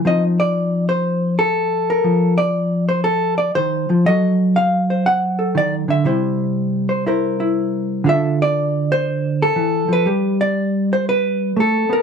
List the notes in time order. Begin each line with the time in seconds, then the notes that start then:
0.05 F3 C4 D#4 D#5
0.40 D5
0.89 C5
1.39 A4
1.90 A#4
2.04 F3
2.38 D5
2.89 C5
3.04 A4
3.38 D5
3.55 D#3 C5
3.90 F3
4.06 F#3 F#4 A4 D#5
4.56 F5
4.90 C5
5.06 F#5
5.39 A4
5.55 D#3 D5
5.88 D3 E5
6.04 C3 G3 E4 C5
6.89 C5
7.06 E4 A#4 C5
7.40 E4
8.04 D3 D4 F4 A4
8.09 E5
8.42 D5
8.92 C5
9.42 A4
9.56 E3
9.88 F3
9.93 B4
10.06 G3 G4
10.41 D5
10.93 C5
11.09 B4
11.56 A3 A4
11.89 B3 A#4